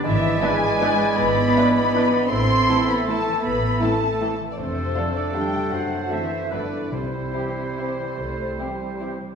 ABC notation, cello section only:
X:1
M:3/4
L:1/8
Q:1/4=154
K:C
V:1 name="Cello section" clef=bass
E,2 ^G,4 | B,3 B,3 | C3 B, A,2 | B,2 A,3 z |
C,3 D, G,2 | ^F,2 E,2 D,2 | C,6- | C,4- C, z |]